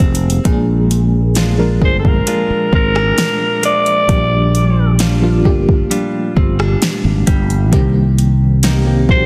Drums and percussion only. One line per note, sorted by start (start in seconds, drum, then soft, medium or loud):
0.00 kick medium
0.00 closed hi-hat medium
0.15 closed hi-hat medium
0.30 closed hi-hat medium
0.45 kick loud
0.45 closed hi-hat medium
0.91 closed hi-hat medium
1.35 snare loud
1.35 closed hi-hat medium
1.82 kick medium
2.05 kick loud
2.27 closed hi-hat medium
2.73 kick loud
2.96 cross-stick loud
3.18 snare loud
3.18 closed hi-hat medium
3.63 closed hi-hat medium
3.86 closed hi-hat soft
4.09 kick loud
4.09 closed hi-hat medium
4.55 closed hi-hat medium
4.99 snare loud
4.99 closed hi-hat medium
5.45 kick medium
5.69 kick medium
5.91 closed hi-hat medium
6.37 kick loud
6.60 cross-stick loud
6.82 snare loud
6.82 closed hi-hat medium
7.27 kick loud
7.27 closed hi-hat medium
7.50 closed hi-hat soft
7.73 kick loud
7.73 closed hi-hat medium
8.18 closed hi-hat medium
8.63 snare loud
8.63 closed hi-hat medium
9.09 kick loud